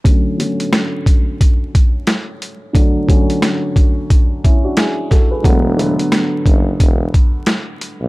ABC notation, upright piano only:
X:1
M:4/4
L:1/16
Q:"Swing 16ths" 1/4=89
K:Dlyd
V:1 name="Upright piano"
z16 | z8 z2 [CE] [DF] [EG]2 [FA] [GB]- | [GB] z12 z3 |]
V:2 name="Upright piano" clef=bass
[D,F,A,C]2 [D,F,A,C]8 z6 | [D,F,A,D]2 [D,F,A,C]8 z6 | [D,F,A,B,]2 [D,F,A,B,]8 z6 |]